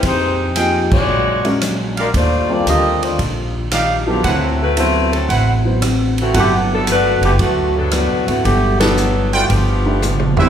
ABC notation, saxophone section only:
X:1
M:4/4
L:1/8
Q:"Swing" 1/4=114
K:G
V:1 name="Saxophone section"
[_A,_EGc]2 z [A,F^cd]3 z [A,DF_B] | [A,D=Fc] [_B,FGd] [B,FG_e] [A,DFc] z3 [=F,B,DG] | [F,CEA] [A,EFB] [A,EFc] [F,CEA] z3 [E,A,CF] | [D,A,B,G] [F,B,DA] [A,DFB] [D,A,B,G] [D,A,B,F] [F,B,DA] [A,DFB] [D,A,B,F] |
[D,A,B,G] [F,B,DA]2 [D,A,B,F] [=F,B,DG]3 z |]